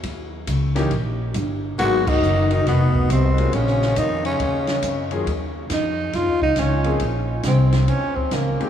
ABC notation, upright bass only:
X:1
M:4/4
L:1/8
Q:"Swing" 1/4=138
K:D#phr
V:1 name="Upright bass" clef=bass
D,,2 C,,2 A,,,2 =G,,,2 | G,,,2 F,,,2 =F,,,2 =C,,2 | A,,,2 ^E,,2 D,,2 F,,2 | [K:Bbphr] E,,2 F,,2 (3G,, E,, D,, D,,2 |
B,,,2 =C,,2 E,,2 D,, z |]